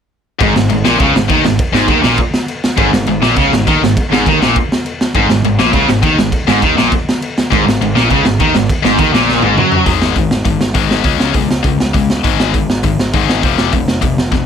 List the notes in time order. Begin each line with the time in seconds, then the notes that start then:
0.39 G#1 G#2, kick, crash
0.55 G#1 G#2, snare
0.69 G#1 G#2, crash
0.84 A#1 A#2, snare
0.99 C#2 C#3, kick, crash
1.15 G#1 G#2, snare
1.29 D#2 D#3, kick, crash
1.42 G#1 G#2, snare
1.46 G#2
1.59 kick, crash
1.72 G#1 G#2, snare
1.88 D#2 D#3, kick, crash
2.02 A#1 A#2, snare
2.18 kick, crash
2.34 snare
2.48 crash
2.64 snare
2.77 G#1 G#2, kick, crash
2.92 G#1 G#2, snare
3.07 G#1 G#2, crash
3.21 A#1 A#2, snare
3.36 C#2 C#3, kick, crash
3.52 G#1 G#2, snare
3.67 D#2 D#3, kick, crash
3.82 G#1 G#2, snare
3.97 kick, crash
4.11 G#1 G#2, snare
4.26 D#2 D#3, kick, crash
4.41 A#1 A#2, snare
4.56 kick, crash
4.72 snare
4.86 crash
5.01 snare
5.15 G#1 G#2, kick, crash
5.28 G#1 G#2, snare
5.43 G#1 G#2, crash
5.58 A#1 A#2, snare
5.73 C#2 C#3, kick, crash
5.88 G#1 G#2, snare
6.02 D#2 D#3, kick, crash
6.17 G#1 G#2, snare
6.32 kick, crash
6.47 G#1 G#2, snare
6.61 D#2 D#3, kick, crash
6.76 A#1 A#2, snare
6.92 kick, crash
7.09 snare
7.22 crash
7.38 snare
7.51 G#1 G#2, kick, crash
7.66 G#1 G#2, snare
7.81 G#1 G#2, crash
7.96 A#1 A#2, snare
8.10 C#2 C#3, kick, crash
8.25 G#1 G#2, snare
8.40 D#2 D#3, kick, crash
8.54 G#1 G#2, snare
8.69 kick, crash
8.83 G#1 G#2, snare
8.98 D#2 D#3, kick, crash
9.13 A#1 A#2, snare
9.29 snare
9.42 G#1 G#2, high tom
9.57 F#2 F#3, mid tom
9.72 floor tom
9.86 G#1 G#2 D#3 G#3, kick, open hi-hat
10.01 G#1, snare
10.16 G#1 G#2 D#3, kick, open hi-hat
10.31 G#1, snare
10.45 G#1 G#2 D#3, kick, open hi-hat
10.59 G#1, snare
10.74 G#1 G#2 D#3 G#3, kick, open hi-hat
10.91 snare
11.04 C#2 C#3 G#3 C#4, kick, open hi-hat
11.19 C#2, snare
11.34 C#2 C#3 G#3, kick, open hi-hat
11.49 C#2, snare
11.63 C#2 C#3 G#3, kick, open hi-hat
11.79 C#2, snare
11.94 C#2 C#3 G#3, kick, open hi-hat
12.10 snare
12.24 G#1 G#2 D#3 G#3, kick, open hi-hat
12.39 G#1, snare
12.54 G#1 G#2 D#3, kick, open hi-hat
12.70 G#1, snare
12.83 G#1 G#2 D#3, kick, open hi-hat
12.98 G#1, snare
13.13 G#1 G#2 D#3 G#3, kick, open hi-hat
13.29 snare
13.43 F1 F2 C3 F3, kick, open hi-hat
13.58 F1, snare
13.72 F1 F2 C3, kick, open hi-hat
13.88 F1, snare
14.01 F1 F2 C3, kick, open hi-hat
14.17 F1, snare
14.31 F1 F2 C3, kick, snare